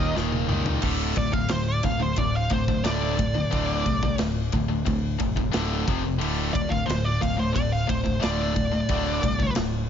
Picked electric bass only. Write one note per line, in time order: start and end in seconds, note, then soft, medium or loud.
0.00 0.11 D#1 medium
0.16 0.45 D#1 medium
0.50 0.78 C#2 medium
0.84 1.13 D1 loud
1.17 1.46 D1 medium
1.51 1.80 D1 loud
1.84 2.13 D1 loud
2.18 2.47 D1 loud
2.51 2.80 D1 loud
2.84 3.43 D1 medium
3.53 3.82 D1 loud
3.86 4.15 C2 medium
4.20 4.49 D1 loud
4.53 4.82 D1 loud
4.88 5.16 D2 loud
5.20 5.49 F1 loud
5.54 5.83 D1 medium
5.88 6.22 F1 medium
6.22 6.50 D1 loud
6.55 6.83 D1 medium
6.89 7.18 D1 loud
7.23 7.51 D1 loud
7.56 7.84 D1 loud
7.90 8.18 D1 loud
8.24 8.81 D1 loud
8.90 9.18 D1 loud
9.24 9.52 C2 medium
9.57 9.85 D1 loud